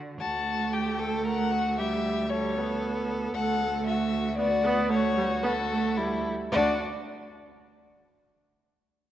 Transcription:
0.00 0.15 D3 medium
0.19 3.31 D2 loud
0.19 1.80 A3 loud
0.19 0.75 F#4 medium
0.19 0.75 A5 loud
0.73 1.01 G4 medium
0.73 1.25 G5 loud
0.99 1.26 A4 loud
1.25 1.53 A#4 medium
1.25 1.77 F#5 loud
1.51 1.80 F#4 loud
1.78 2.30 G3 medium
1.78 2.30 G4 medium
1.78 2.31 E5 loud
2.30 2.59 G3 loud
2.30 3.33 A4 medium
2.30 3.08 C#5 loud
2.57 3.35 B3 medium
3.34 6.27 D2 loud
3.34 3.59 A3 loud
3.34 3.85 A4 loud
3.34 3.82 F#5 loud
3.60 4.36 A3 medium
3.86 4.38 F#4 medium
3.86 4.37 E5 loud
4.38 4.46 B3 loud
4.38 4.90 F#4 medium
4.38 4.89 D5 loud
4.63 4.91 B3 loud
4.90 5.16 A3 loud
4.90 5.98 F#4 loud
4.90 5.42 C#5 loud
5.17 5.25 G3 loud
5.43 5.51 B3 loud
5.43 6.23 A4 loud
5.71 5.99 A3 loud
5.96 6.31 G3 medium
5.96 6.31 E4 medium
6.52 6.82 D2 loud
6.52 6.82 D4 loud
6.52 6.82 F#4 loud
6.52 6.82 D5 loud

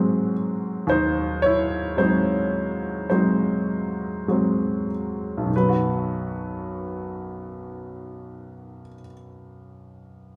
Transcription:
0.00 0.84 G#2 medium
0.00 1.97 F#3 soft
0.00 1.98 G#3 soft
0.00 1.98 C4 soft
0.00 0.33 G#4 medium
0.87 5.49 D#2 soft
0.87 1.39 C5 medium
0.92 1.40 D#4 medium
1.42 1.95 E4 medium
1.42 1.99 C#5 medium
1.97 3.07 F#3 soft
1.97 3.07 G#3 soft
1.97 3.07 C4 soft
1.97 3.07 C5 medium
2.02 3.09 D#4 soft
3.10 4.25 F#3 soft
3.10 4.26 G#3 soft
3.10 4.26 C4 soft
3.10 4.86 C5 medium
3.15 4.88 D#4 soft
4.28 5.49 F#3 soft
4.28 5.49 G#3 soft
4.28 5.50 C4 soft
5.37 8.82 B1 soft
5.44 8.88 F#2 soft
5.50 8.94 D#3 soft
5.56 9.00 F#3 soft
5.56 9.00 B4 medium
5.62 9.06 B3 soft
5.69 9.13 F#4 soft

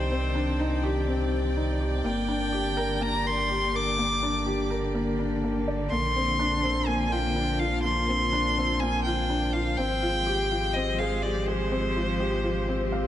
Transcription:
0.00 2.02 C2 medium
0.00 2.04 D#3 medium
0.00 0.11 C4 medium
0.00 3.59 C4 medium
0.00 0.35 D4 medium
0.00 0.60 D#4 medium
0.00 0.83 G4 medium
0.00 0.83 C5 medium
0.00 7.47 D5 medium
0.00 7.04 G5 medium
0.11 0.34 C4 medium
0.35 0.58 D4 medium
0.60 0.82 D#4 medium
0.83 1.06 G4 loud
1.08 1.31 C4 medium
1.32 1.46 G4 medium
1.56 1.79 D#4 medium
1.80 2.03 G4 medium
2.04 5.89 G1 medium
2.04 9.79 D3 medium
2.04 2.27 A#3 medium
2.04 3.04 G5 medium
2.13 10.87 A#3 medium
2.28 2.52 D4 medium
2.52 2.76 G4 medium
2.77 3.00 A#4 loud
3.01 3.24 A#3 medium
3.01 3.28 A#5 loud
3.25 3.39 A#4 medium
3.25 3.77 C6 loud
3.49 3.73 G4 medium
3.74 3.97 A#4 medium
3.74 4.71 D6 loud
3.98 4.21 A#3 medium
4.23 4.45 D4 medium
4.46 4.69 G4 medium
4.70 4.93 A#4 medium
4.95 5.18 A#3 medium
5.19 5.33 D4 medium
5.44 5.66 A#3 medium
5.68 5.90 D5 medium
5.90 9.76 A#1 medium
5.90 6.15 A#3 medium
5.90 6.88 C6 loud
6.04 13.07 C5 medium
6.16 6.39 C4 medium
6.26 11.24 F4 medium
6.39 6.63 D4 medium
6.63 6.87 C4 medium
6.87 7.11 A#3 medium
6.87 7.13 G#5 loud
7.12 7.26 F4 medium
7.12 7.61 G5 loud
7.36 7.59 D4 medium
7.59 7.83 F4 medium
7.59 7.83 F5 medium
7.83 8.08 A#3 medium
7.83 8.82 C6 loud
8.09 8.32 C4 medium
8.33 8.56 D4 medium
8.58 8.81 C4 medium
8.80 9.05 A#3 medium
8.80 9.04 G#5 loud
9.04 9.20 F4 medium
9.04 9.54 G5 medium
9.30 9.53 D4 medium
9.53 9.77 F4 medium
9.53 9.78 F5 medium
9.77 13.07 G#1 medium
9.77 13.07 F3 medium
9.77 10.01 C4 medium
9.77 10.75 G5 loud
9.88 13.07 G#3 medium
10.02 10.26 F4 medium
10.27 10.50 G4 medium
10.34 13.07 G4 medium
10.51 10.74 F4 medium
10.74 10.99 C4 medium
10.74 11.00 D#5 medium
10.98 11.14 G#4 medium
10.98 11.24 F5 medium
11.22 11.47 G4 medium
11.22 11.47 D5 medium
11.46 11.71 G#4 medium
11.46 13.07 C5 medium
11.71 11.95 C4 medium
11.96 12.19 F4 medium
12.20 12.43 G4 medium
12.44 12.67 F4 medium
12.68 12.92 C4 medium
12.68 swell soft
12.92 13.07 F5 medium

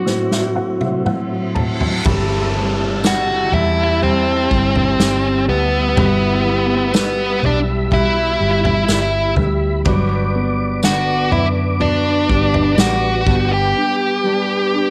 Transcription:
0.00 0.06 A2 medium
0.00 2.02 A2 medium
0.00 0.32 F#3 soft
0.00 2.02 F#3 soft
0.00 2.02 C4 soft
0.00 1.02 F#4 medium
0.00 2.07 B4 medium
0.06 0.54 A2 soft
0.06 2.03 E4 medium
0.06 0.30 C5 medium
0.06 snare soft
0.06 reverse cymbal medium
0.31 0.79 F#3 soft
0.31 0.55 E5 soft
0.31 snare soft
0.56 1.04 A2 soft
0.56 0.79 F#5 medium
0.80 1.29 F#3 soft
0.80 1.04 E5 soft
0.80 high tom medium
1.05 1.54 A2 soft
1.05 1.53 F#5 medium
1.05 mid tom medium
1.30 1.77 F#3 soft
1.55 2.04 A2 soft
1.55 2.02 A5 medium
1.55 floor tom medium
1.79 2.04 F#3 soft
1.79 floor tom medium
2.05 3.49 G1 medium
2.05 2.53 G3 medium
2.05 2.55 G3 medium
2.05 9.81 G3 medium
2.05 2.55 C4 medium
2.05 2.54 E4 medium
2.05 2.53 A4 medium
2.05 9.81 E5 medium
2.05 5.93 A5 medium
2.05 kick loud
2.05 floor tom loud
2.05 crash medium
2.05 downlifter medium
2.54 3.02 G3 soft
2.54 3.03 C4 soft
2.54 3.04 E4 soft
2.54 3.04 A4 medium
3.03 4.00 G3 medium
3.03 3.51 G3 medium
3.03 4.02 C4 soft
3.03 4.04 E4 medium
3.03 3.51 F#4 medium
3.03 4.03 A4 medium
3.03 snare loud
3.03 tambourine medium
3.07 3.54 F#5 medium
3.52 4.46 E2 medium
3.52 3.99 G3 soft
3.52 3.99 E4 medium
3.52 3.99 E5 medium
3.52 floor tom medium
4.01 5.97 G3 medium
4.01 4.49 G3 medium
4.01 5.45 C4 medium
4.01 5.98 E4 medium
4.01 5.45 C5 medium
4.01 floor tom soft
4.06 5.99 A4 medium
4.50 4.96 G1 medium
4.50 4.97 G3 medium
4.50 kick medium
4.75 floor tom medium
4.99 5.49 G1 medium
4.99 5.46 G3 medium
4.99 snare loud
4.99 tambourine medium
5.47 5.93 D2 medium
5.47 5.95 G3 soft
5.47 6.91 B3 medium
5.47 6.95 B4 medium
5.96 7.39 G1 loud
5.96 6.44 G3 medium
5.96 6.46 G3 medium
5.96 6.46 B3 medium
5.96 6.43 E4 medium
5.96 6.45 F#4 medium
5.96 9.82 B5 medium
5.96 floor tom loud
6.45 6.94 G3 medium
6.45 7.92 B3 soft
6.45 7.91 E4 soft
6.45 7.94 F#4 soft
6.94 7.43 G3 medium
6.94 7.41 B3 medium
6.94 7.45 B4 medium
6.94 snare loud
6.94 tambourine medium
7.43 8.36 B1 medium
7.43 7.90 G3 medium
7.43 7.59 D4 medium
7.43 7.59 D5 medium
7.43 floor tom medium
7.91 9.83 G3 medium
7.91 8.39 G3 medium
7.91 9.85 B3 medium
7.91 9.34 E4 medium
7.91 9.85 F#4 medium
7.91 9.34 E5 medium
7.91 kick medium
7.91 floor tom medium
7.96 9.86 E4 medium
8.40 8.85 G1 medium
8.40 8.88 G3 medium
8.65 floor tom medium
8.88 9.33 G1 loud
8.88 9.37 G3 medium
8.88 snare loud
8.88 tambourine medium
9.36 9.82 D2 medium
9.36 9.85 G3 medium
9.36 floor tom medium
9.85 11.27 G1 loud
9.85 13.23 F#3 medium
9.85 10.88 G3 medium
9.85 10.82 B3 medium
9.85 10.84 D4 medium
9.85 10.84 F#4 loud
9.85 14.90 B4 medium
9.85 13.23 D5 medium
9.85 14.90 D6 medium
9.85 kick loud
9.85 floor tom loud
10.36 12.26 B3 medium
10.83 12.75 D3 medium
10.83 11.80 B3 medium
10.83 11.80 D4 medium
10.83 11.81 F#4 medium
10.83 11.29 F#4 medium
10.83 11.32 F#5 loud
10.83 snare loud
10.83 tambourine medium
11.32 12.25 F#2 medium
11.32 11.45 E4 medium
11.32 11.46 E5 medium
11.32 floor tom medium
11.80 13.27 B3 medium
11.80 13.26 D4 medium
11.80 12.74 D4 medium
11.80 13.31 F#4 medium
11.80 12.81 D5 medium
11.80 floor tom medium
12.29 12.74 G1 medium
12.29 12.77 G3 medium
12.29 kick medium
12.54 floor tom medium
12.78 13.23 A1 medium
12.78 13.25 G3 medium
12.78 13.48 F#4 medium
12.78 13.53 F#5 medium
12.78 snare loud
12.78 tambourine medium
13.26 13.72 G1 loud
13.26 14.22 G3 medium
13.26 14.90 G3 medium
13.26 14.25 B3 medium
13.26 14.25 D4 medium
13.26 14.90 G5 medium
13.26 kick loud
13.52 14.90 G4 medium
13.52 14.90 G5 loud
13.76 14.72 D4 medium
14.24 14.90 G3 medium
14.24 14.90 B3 soft
14.24 14.90 D4 soft
14.74 14.90 D4 medium

